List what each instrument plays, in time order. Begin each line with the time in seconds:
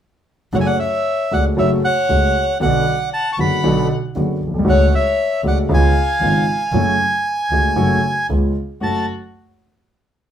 0.53 double bass F#1, grand piano F#2 C#3 F#3 A3 F#4, violin C#5, bandoneon F#5
0.60 violin E5, bandoneon G#5
0.65 violin D5, bandoneon F#5
0.79 violin C#5, bandoneon E5
1.31 grand piano C#2 C#3 F#3 A3 F#4, double bass C#2, violin D5, bandoneon F#5
1.57 double bass F#1, grand piano F#2 C#3 F#3 A3 F#4, violin C#5, bandoneon E5
1.85 violin C#5, bandoneon F#5
2.09 grand piano C#2 C#3 F#3 A3 F#4, double bass C#2
2.60 grand piano B1 B2 D3 F#3 B3 F#4, double bass B1, violin D5, bandoneon F#5
3.14 violin F#5, bandoneon A5
3.33 violin A5, bandoneon C#6
3.38 double bass F#1, grand piano F#1 F#2 D3 F#3 B3 F#4, violin F#5, bandoneon B5
3.63 double bass B1, grand piano B1 B2 D3 F#3 B3 F#4
4.15 grand piano F#1 F#2 D3 F#3 B3 F#4, double bass F#1
4.43 double bass B1
4.47 grand piano A#1
4.54 grand piano B1
4.59 grand piano C2
4.64 grand piano C#2 C#3 F#3 A3 F#4, double bass C#2
4.69 violin C#5, bandoneon F#5
4.95 violin C#5, bandoneon E5
5.43 grand piano C#2 C#3 F#3 A3 F#4, double bass C#2, violin D5
5.48 bandoneon F#5
5.69 grand piano C#2 C#3 G#3 B3 F4, double bass C#2
5.73 violin F5, bandoneon G#5
6.21 double bass G#1, grand piano G#1 G#2 C#3 G#3 B3 F4
6.72 double bass F#1, grand piano F#2 C#3 F#3 A3 F#4
7.50 double bass C#2, grand piano C#2 C#3 F#3 A3 F#4
7.75 double bass F#1, grand piano F#2 C#3 F#3 A3 F#4
8.29 double bass C#2, grand piano C#2 C#3 G#3 B3 F4
8.81 double bass F#1, grand piano F#2 A3 C#4 F#4, violin F#4, bandoneon A5